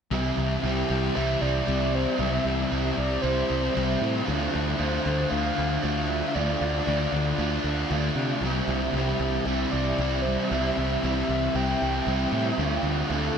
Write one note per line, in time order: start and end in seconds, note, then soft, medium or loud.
0.11 0.30 C2 medium
0.11 1.14 C3 medium
0.11 0.63 E3 medium
0.11 0.64 G3 medium
0.11 0.65 C4 medium
0.11 0.65 E4 medium
0.36 0.56 C2 medium
0.36 0.64 G3 medium
0.36 0.66 C4 medium
0.63 0.82 C2 medium
0.63 1.67 C3 medium
0.63 1.14 E3 medium
0.63 1.14 G3 medium
0.63 1.16 C4 medium
0.63 1.15 E4 medium
0.63 1.17 G4 medium
0.89 1.09 C2 medium
0.89 1.67 G3 soft
0.89 1.69 C4 medium
1.15 1.35 C2 medium
1.15 1.67 C3 medium
1.15 1.64 E3 medium
1.15 1.41 G3 medium
1.15 1.41 C4 medium
1.15 1.39 E4 medium
1.15 1.43 E5 loud
1.40 1.60 C2 medium
1.40 1.64 G3 medium
1.40 1.65 C4 medium
1.40 1.65 E4 medium
1.40 1.96 D5 loud
1.65 2.05 C2 medium
1.65 2.18 C3 medium
1.65 2.16 E3 medium
1.65 2.17 G3 medium
1.65 2.18 C4 medium
1.65 2.18 E4 medium
1.92 2.19 G3 medium
1.92 2.21 C4 medium
1.92 2.19 C5 medium
2.17 2.38 C2 medium
2.17 2.96 C3 medium
2.17 2.69 E3 medium
2.17 2.70 G3 medium
2.17 2.71 C4 medium
2.17 2.72 E4 medium
2.17 2.68 E5 medium
2.45 2.64 C2 medium
2.45 2.71 G3 medium
2.45 2.72 C4 medium
2.70 2.91 C2 medium
2.70 3.23 C3 medium
2.70 3.21 E3 medium
2.70 3.22 G3 medium
2.70 3.23 C4 medium
2.70 3.23 E4 medium
2.97 3.17 C2 medium
2.97 3.75 G3 medium
2.97 3.76 C4 medium
2.97 3.23 D5 loud
3.22 3.42 C2 medium
3.22 3.75 C3 medium
3.22 3.72 E3 medium
3.22 3.47 G3 medium
3.22 3.47 C4 medium
3.22 3.46 E4 medium
3.22 4.00 C5 loud
3.47 3.69 C2 medium
3.47 3.73 G3 soft
3.47 3.75 C4 medium
3.47 3.74 E4 medium
3.74 3.95 C2 medium
3.74 4.25 C3 medium
3.74 4.24 E3 medium
3.74 4.25 G3 medium
3.74 4.27 C4 medium
3.74 4.26 E4 medium
4.01 4.20 A2 medium
4.01 4.27 G3 medium
4.01 4.30 C4 medium
4.25 4.47 D2 medium
4.25 4.77 D3 medium
4.25 4.78 A3 medium
4.25 4.78 D4 medium
4.25 4.79 F4 medium
4.54 4.73 D2 medium
4.54 4.81 A3 medium
4.54 4.83 D4 medium
4.77 4.98 D2 medium
4.77 5.27 D3 medium
4.77 5.28 A3 medium
4.77 5.29 D4 medium
4.77 5.29 F4 medium
4.77 5.31 C5 medium
4.83 5.06 D4 medium
5.06 5.24 D2 medium
5.06 5.83 A3 medium
5.06 5.83 D4 medium
5.29 5.50 D2 medium
5.29 5.80 D3 medium
5.29 5.55 A3 loud
5.29 5.55 D4 medium
5.29 5.54 F4 medium
5.29 5.82 F5 loud
5.55 5.77 D2 medium
5.55 5.82 A3 medium
5.55 5.82 D4 medium
5.55 5.82 F4 medium
5.82 6.21 D2 medium
5.82 6.33 D3 medium
5.82 6.34 A3 medium
5.82 6.34 D4 medium
5.82 6.35 F4 medium
6.08 6.37 D4 medium
6.08 6.36 E5 loud
6.12 6.36 A3 medium
6.34 6.54 D2 medium
6.34 6.85 D3 medium
6.34 6.85 A3 medium
6.34 6.86 D4 medium
6.34 6.87 F4 medium
6.34 7.91 D5 loud
6.61 6.80 D2 medium
6.61 6.88 A3 medium
6.61 6.89 D4 medium
6.86 7.06 D2 medium
6.86 7.37 D3 medium
6.86 7.38 A3 medium
6.86 7.38 D4 medium
6.86 7.38 F4 medium
7.12 7.31 D2 medium
7.12 7.91 A3 soft
7.12 7.92 D4 medium
7.38 7.57 D2 medium
7.38 7.90 D3 medium
7.38 7.67 A3 medium
7.38 7.66 D4 medium
7.38 7.65 F4 medium
7.64 7.83 D2 medium
7.64 7.91 D4 medium
7.64 7.92 F4 medium
7.69 7.91 A3 medium
7.91 8.09 D2 medium
7.91 8.41 D3 medium
7.91 8.42 A3 medium
7.91 8.42 D4 medium
7.91 8.42 F4 medium
8.15 8.35 C3 medium
8.15 8.42 A3 medium
8.15 8.41 D4 medium
8.41 8.60 C2 medium
8.41 9.47 C3 medium
8.41 8.95 E3 medium
8.41 8.95 G3 medium
8.46 8.97 C4 medium
8.46 8.97 E4 medium
8.68 8.87 C2 medium
8.68 8.95 G3 medium
8.68 8.96 C4 medium
8.93 9.12 C2 medium
8.93 9.99 C3 medium
8.93 9.46 E3 medium
8.93 9.47 G3 medium
8.93 9.47 G4 medium
8.97 9.48 C4 medium
8.97 9.48 E4 medium
9.20 9.39 C2 medium
9.20 10.00 G3 medium
9.20 10.01 C4 medium
9.45 9.65 C2 medium
9.45 9.99 C3 medium
9.45 9.98 E3 medium
9.45 9.74 G3 medium
9.45 9.73 C4 loud
9.45 9.72 E4 medium
9.45 9.73 E5 loud
9.71 9.92 C2 medium
9.71 9.99 G3 medium
9.71 10.00 C4 medium
9.71 10.00 E4 medium
9.71 10.23 D5 loud
9.98 10.36 C2 medium
9.98 10.50 C3 medium
9.98 10.51 E3 medium
9.98 10.52 G3 medium
9.98 10.52 C4 medium
9.98 10.52 E4 medium
10.22 10.53 C4 medium
10.22 10.49 C5 medium
10.28 10.51 G3 medium
10.49 10.70 C2 medium
10.49 11.29 C3 medium
10.49 11.01 E3 medium
10.49 11.02 G3 medium
10.49 11.03 C4 medium
10.49 11.03 E4 medium
10.49 10.98 E5 loud
10.77 10.96 C2 medium
10.77 11.02 G3 medium
10.77 11.04 C4 medium
11.02 11.22 C2 medium
11.02 11.54 C3 medium
11.02 11.54 E3 medium
11.02 11.55 G3 medium
11.02 11.56 C4 medium
11.02 11.56 E4 medium
11.02 11.57 E5 loud
11.28 11.48 C2 medium
11.28 12.07 G3 medium
11.28 12.09 C4 medium
11.55 11.73 C2 medium
11.55 12.07 C3 medium
11.55 12.06 E3 medium
11.55 11.82 G3 medium
11.55 11.83 C4 medium
11.55 11.80 E4 loud
11.55 12.33 G5 loud
11.81 12.00 C2 medium
11.81 12.07 G3 medium
11.81 12.08 C4 medium
11.81 12.08 E4 medium
12.06 12.25 C2 medium
12.06 12.57 C3 medium
12.06 12.57 E3 medium
12.06 12.58 G3 medium
12.06 12.60 C4 medium
12.06 12.58 E4 medium
12.32 12.51 A2 medium
12.32 12.58 G3 medium
12.32 12.60 C4 medium
12.58 12.77 D2 medium
12.58 13.11 D3 medium
12.58 13.11 A3 medium
12.58 13.12 D4 medium
12.58 13.13 F4 medium
12.83 13.02 D2 medium
12.83 13.13 D4 medium
12.88 13.11 A3 medium
13.10 13.29 D2 medium
13.10 13.38 D3 medium
13.10 13.38 A3 medium
13.10 13.38 D4 medium
13.10 13.38 F4 medium
13.10 13.38 A4 medium